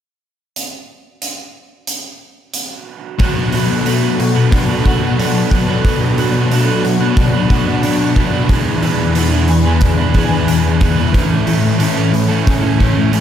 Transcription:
0.56 closed hi-hat
1.22 closed hi-hat
1.87 closed hi-hat
2.54 closed hi-hat
3.18 B2 F#3 B3 D4 F#4 A4 B4, kick, open hi-hat
3.52 F#3 B3 D4 F#4 B4, open hi-hat
3.68 F#3 B3
3.84 B2 F#3 A3 B3 D4, open hi-hat
3.88 F#4 B4
4.02 B3 D4 F#4 B4
4.18 B2 F#3 B3 F#4, muted overdriven electric guitar stroke, open hi-hat
4.35 B3 D4 F#4 B4, muted distorted electric guitar stroke
4.51 B2 F#3 B3 D4, kick, open hi-hat
4.67 F#3 B3 D4 F#4 B4
4.83 B2 F#3 B3 D4 F#4, kick, open hi-hat
4.87 B4
5.01 B3 D4 F#4 B4, muted distorted electric guitar stroke
5.17 B2 F#3 B3 D4 F#4 B4, open hi-hat
5.51 F#3 B3 D4 F#4 B4, kick, open hi-hat
5.67 F#3 B3 D4 F#4 B4
5.83 B2 F#3 B3 D4 F#4 B4, kick, open hi-hat
6.16 F#3 B3 D4 F#4 B4, open hi-hat
6.32 F#3 B3
6.49 B2 F#3 A3 B3 D4 F#4 B4, open hi-hat
6.67 B3 D4 F#4 B4
6.83 B2 F#3 B3 F#4, muted overdriven electric guitar stroke, open hi-hat
7.00 B3 D4 F#4 B4, muted distorted electric guitar stroke
7.16 B2 F#3 B3 D4, kick, open hi-hat
7.32 F#3 B3 D4 F#4 B4
7.49 B2 F#3 B3 D4 F#4, kick, open hi-hat
7.53 B4
7.66 B3 D4 F#4 B4, muted distorted electric guitar stroke
7.82 B2 F#3 B3 D4 F#4 B4, open hi-hat
8.15 F#3 B3 D4 F#4 B4, kick, open hi-hat
8.32 F#3 B3 D4 F#4 B4
8.47 E2 B2 E3 B3 D4 G#4 B4, kick, open hi-hat
8.82 E3 B3 D4 G#4 B4, open hi-hat
8.99 B2 E3
9.15 E2 B2 E3 B3 D4 G#4 B4, open hi-hat
9.31 D4 G#4 B4
9.47 E2 B2 E3 G#4, muted overdriven electric guitar stroke, open hi-hat
9.65 D4 G#4 B4, muted distorted electric guitar stroke
9.80 E2 B2 E3 D4, kick, open hi-hat
9.97 B2 E3 D4 G#4 B4
10.13 E2 B2 E3 B3 D4 G#4, kick, open hi-hat
10.17 B4
10.30 D4 G#4 B4, muted distorted electric guitar stroke
10.46 E2 B2 E3 B3 D4 G#4, open hi-hat
10.50 B4
10.80 E3 B3 D4 G#4 B4, kick, open hi-hat
10.96 B2 E3 D4 G#4 B4
11.12 A2 E3 A3 C#4 E4 A4, kick, open hi-hat
11.45 E3 A3 C#4 E4 A4, open hi-hat
11.63 E3 A3
11.78 A2 E3 A3 C#4 E4 A4, open hi-hat
11.95 A3 C#4 E4 A4
12.13 A2 E3 A3, muted overdriven electric guitar stroke, open hi-hat
12.28 A3 C#4 E4 A4, muted distorted electric guitar stroke
12.46 A2 E3 A3 C#4, kick, open hi-hat
12.62 E3 A3 C#4 E4 A4
12.78 A2 E3 A3 C#4 E4 A4, kick, open hi-hat
12.95 A3 C#4 E4 A4, muted distorted electric guitar stroke
13.11 A2 E3 A3 C#4 E4 A4, open hi-hat

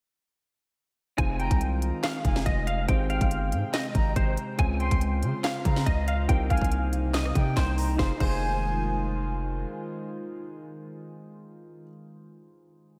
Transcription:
1.17 F1 D#3 G#3 C4 D#4 F4 G#4 C5 G#5, kick, closed hi-hat
1.40 G5 A#5, closed hi-hat
1.51 C2, kick, closed hi-hat
1.61 closed hi-hat
1.82 closed hi-hat
2.03 F5, snare, clap, closed hi-hat
2.25 F1 G#5, kick, closed hi-hat
2.36 snare
2.46 F1 D#5, kick, closed hi-hat
2.67 F5, closed hi-hat
2.87 G#1 C3 C4 D#4 G4 G#4 C5 G5, kick, closed hi-hat
3.10 F5 G5, closed hi-hat
3.21 G1, kick, closed hi-hat
3.31 closed hi-hat
3.52 G#2, closed hi-hat
3.74 D#5, snare, clap, closed hi-hat
3.95 G#1 A#5, kick, closed hi-hat
4.16 G#1 C5, kick, closed hi-hat
4.37 closed hi-hat
4.57 C#2 C#3 C4 C#4 F4 G#4 C5 G#5, kick, closed hi-hat
4.80 G5 C6, closed hi-hat
4.91 C#2, kick, closed hi-hat
5.01 closed hi-hat
5.23 C#3, closed hi-hat
5.44 F5, snare, clap, closed hi-hat
5.65 C#3 A#5, kick, closed hi-hat
5.76 snare
5.86 C#2 D#5, kick, closed hi-hat
6.08 F5, closed hi-hat
6.28 C2 C3 A#3 C4 D#4 G4 A#4 C5 G5, kick, closed hi-hat
6.50 C2 F5 G#5, kick, closed hi-hat
6.57 closed hi-hat
6.61 kick, closed hi-hat
6.72 closed hi-hat
6.93 closed hi-hat
7.14 D#5, snare, clap, closed hi-hat
7.25 cross-stick
7.35 C3 G5, kick, closed hi-hat
7.57 C2 C5, kick, snare, clap, closed hi-hat
7.78 A#5, open hi-hat
7.96 F1 D#3 G#3 D#4 F4 G#4 C5 G#5, kick, snare
8.02 C5
8.18 F1 D#4 F4 G#4 C5 G#5, kick, crash
8.23 C5

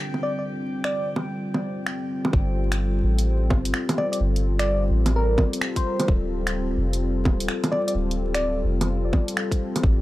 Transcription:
Already playing: D3 G3 C4 F4 G4 A4 G5
0.14 low bongo
0.23 D5
0.39 D5
0.84 D5, finger snap
1.16 low bongo
1.54 low bongo
1.86 finger snap
2.25 low bongo
2.33 G1, kick
2.72 finger snap, closed hi-hat
3.03 A1
3.19 closed hi-hat
3.50 G1, kick, low bongo
3.65 closed hi-hat
3.74 finger snap
3.89 closed hi-hat, low bongo
3.98 D5, low bongo
4.12 D5, closed hi-hat
4.20 G1
4.36 closed hi-hat
4.59 D5, finger snap, closed hi-hat
4.90 A1
5.06 closed hi-hat, low bongo
5.16 A#4
5.38 kick, low bongo
5.53 closed hi-hat
5.61 finger snap
5.76 C5, kick, closed hi-hat
6.00 closed hi-hat, low bongo
6.08 D1, kick
6.47 finger snap, closed hi-hat
6.78 F1
6.93 closed hi-hat
7.25 D1, kick, low bongo
7.40 closed hi-hat
7.48 finger snap
7.64 closed hi-hat, low bongo
7.72 D5, low bongo
7.87 D5, closed hi-hat
7.95 D1
8.11 closed hi-hat
8.34 D5, finger snap, closed hi-hat
8.65 F1
8.81 closed hi-hat, low bongo
9.13 kick, low bongo
9.28 closed hi-hat
9.37 finger snap
9.51 kick, closed hi-hat
9.76 closed hi-hat, low bongo
9.83 A1, kick

